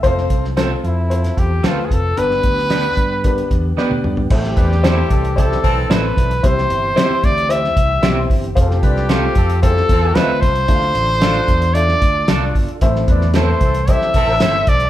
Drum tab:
CC |----------------|----------------|x---------------|----------------|
HH |x-x-x-x-xxx-x-x-|x-x-x-x-xxx-----|--x-x-xxx-x-x-xx|x-x-x-xxx-x-x-ox|
SD |-o-oo----o--o---|-o-oo-------o---|-o-oo----o--o---|-o--o----o--o---|
T1 |----------------|-------------o--|----------------|----------------|
T2 |----------------|--------------o-|----------------|----------------|
FT |----------------|---------------o|----------------|----------------|
BD |o-o-------o---o-|--o---o-o-o-----|o-o---o-o-o---o-|o-----o---o---o-|

CC |----------------|----------------|----------------|
HH |x-x-x-xxx-x-x-xx|x-x-x-xxx-x-x-ox|x-x-x-xxx-x-x-xx|
SD |-o-oo----o--o---|-o--o----o--o---|-o-oo----o--o---|
T1 |----------------|----------------|----------------|
T2 |----------------|----------------|----------------|
FT |----------------|----------------|----------------|
BD |o-o---o-o-o---o-|o-----o---o---o-|o-o---o-o-o---o-|